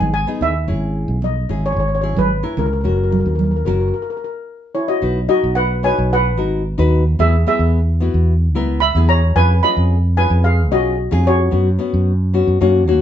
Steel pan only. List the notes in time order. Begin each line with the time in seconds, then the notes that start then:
0.14 G#5
0.42 E5
1.24 D#5
1.66 C#5
1.72 C#5
1.80 C#5
1.88 C#5
1.95 C#5
2.01 C#5
2.18 B4
2.59 A#4
2.66 A#4
2.73 A#4
2.81 A#4
2.88 A#4
2.97 A#4
3.04 A#4
3.11 A#4
3.20 A#4
3.27 A#4
3.35 A#4
3.44 A#4
3.51 A#4
3.56 A#4
3.65 A#4
3.73 A#4
3.80 A#4
3.88 A#4
3.94 A#4
4.02 A#4
4.10 A#4
4.17 A#4
4.24 A#4
4.75 E4 C#5
4.88 F#4 D#5
5.29 F#4 D#5
5.55 B4 F#5
5.84 B4 G#5
6.13 B4 F#5
7.20 G#4 E5
7.48 G#4 E5
8.80 E5 B5
9.09 C#5 A#5
9.36 B4 G#5
9.63 D#5 B5
10.17 B4 G#5
10.44 G#4 F5
10.72 F#4 D#5
11.27 F#4 C#5